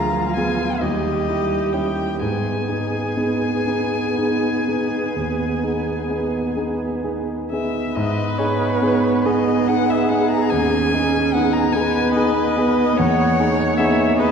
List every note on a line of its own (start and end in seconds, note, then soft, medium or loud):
0.00 0.83 D2 soft
0.00 0.77 F3 soft
0.00 0.33 F4 soft
0.00 0.84 F4 soft
0.00 0.33 G#4 soft
0.00 0.36 A#5 medium
0.37 0.78 B3 soft
0.37 0.78 F4 soft
0.37 0.78 G#4 soft
0.37 0.82 G#5 medium
0.80 1.25 D#2 soft
0.80 2.16 G3 soft
0.80 2.22 G4 soft
0.80 1.74 D#5 medium
1.28 1.69 E4 soft
1.28 1.70 G4 soft
1.73 2.16 C#4 soft
1.73 2.17 E4 soft
1.73 2.17 G4 soft
1.73 2.21 G5 medium
2.19 2.67 G#2 soft
2.19 7.72 B3 soft
2.19 7.28 G#4 soft
2.19 6.57 G#5 medium
2.68 3.13 D#4 soft
2.68 3.13 G#4 soft
3.17 3.63 B3 soft
3.17 3.63 D#4 soft
3.17 3.63 G#4 soft
3.67 4.14 B3 soft
3.67 4.14 D#4 soft
3.67 4.15 G#4 soft
4.17 4.64 D#4 soft
4.17 4.64 G#4 soft
4.68 5.12 B3 soft
4.68 5.13 D#4 soft
4.68 5.13 G#4 soft
5.16 5.62 D#2 soft
5.63 6.06 D#4 soft
5.63 6.06 G#4 soft
6.10 6.53 B3 soft
6.10 6.53 D#4 soft
6.10 6.54 G#4 soft
6.57 7.00 B3 soft
6.57 7.01 D#4 soft
6.57 7.01 G#4 soft
7.04 7.48 D#4 soft
7.04 7.48 G#4 soft
7.51 7.93 B3 soft
7.51 7.93 D#4 soft
7.51 7.93 G#4 soft
7.51 7.97 E5 medium
7.95 8.38 G#2 medium
7.95 10.53 B3 medium
7.95 9.28 B4 medium
7.95 8.40 D#5 medium
8.38 8.79 D#4 soft
8.38 8.78 G#4 soft
8.38 9.27 C#5 medium
8.82 9.21 B3 soft
8.82 9.21 D#4 soft
8.82 9.22 G#4 soft
9.25 9.64 B3 soft
9.25 9.64 D#4 soft
9.25 9.64 G#4 soft
9.25 11.77 G#4 medium
9.25 9.70 D#5 medium
9.68 10.06 D#4 soft
9.68 10.06 G#4 soft
9.68 9.92 F#5 medium
9.90 10.10 E5 medium
10.09 10.48 B3 soft
10.09 10.48 D#4 soft
10.09 10.48 G#4 soft
10.09 10.30 F#5 medium
10.31 10.52 A#5 medium
10.50 10.92 D#2 soft
10.50 11.75 C#4 medium
10.50 11.35 G#5 medium
10.94 11.31 D#4 soft
10.94 11.31 G#4 soft
11.34 11.71 B3 soft
11.34 11.71 D#4 soft
11.34 11.71 G#4 soft
11.34 11.55 F#5 medium
11.53 11.74 A#5 medium
11.72 12.11 B3 soft
11.72 12.97 B3 medium
11.72 12.11 D#4 soft
11.72 12.12 G#4 soft
11.72 12.99 B4 medium
11.72 12.13 G#5 medium
12.14 12.53 D#4 soft
12.14 12.53 G#4 soft
12.14 12.99 D#5 medium
12.57 12.95 B3 soft
12.57 12.95 D#4 soft
12.57 12.95 G#4 soft
12.97 13.38 E2 medium
12.97 14.31 A#3 medium
12.97 14.21 C#5 medium
12.97 13.79 F#5 medium
13.40 13.75 D#4 soft
13.40 13.75 G#4 soft
13.78 14.14 B3 soft
13.78 14.14 D#4 soft
13.78 14.14 G#4 soft
13.78 14.16 E5 medium
14.17 14.31 B3 soft
14.17 14.31 D#4 soft
14.17 14.31 G#4 soft
14.17 14.31 B4 medium
14.17 14.31 D#5 medium